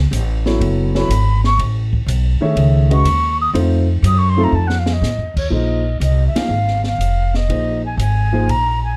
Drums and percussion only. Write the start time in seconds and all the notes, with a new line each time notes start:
0.13 hi-hat pedal, ride
0.46 snare
0.61 ride
0.95 snare
1.10 hi-hat pedal, ride
1.44 snare
1.59 ride
1.93 kick
2.08 hi-hat pedal, ride
2.57 ride
2.91 ride
3.05 hi-hat pedal, ride
3.55 ride
4.04 hi-hat pedal, ride
4.70 snare
4.86 snare
5.03 snare, hi-hat pedal
5.37 kick, crash
6.01 hi-hat pedal, ride
6.36 snare, ride
6.68 snare
6.84 snare
7.01 hi-hat pedal, ride
7.34 snare
7.50 ride
7.99 hi-hat pedal, ride
8.49 ride